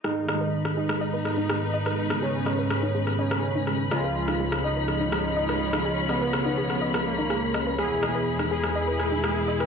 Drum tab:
SD |r-r--r-r--r-r--r|-r--r-r--r-r--r-|r--r-r--r-r--r-r|--r-r--r-r--r-r-|

SD |r-r--r-r--r-r--r|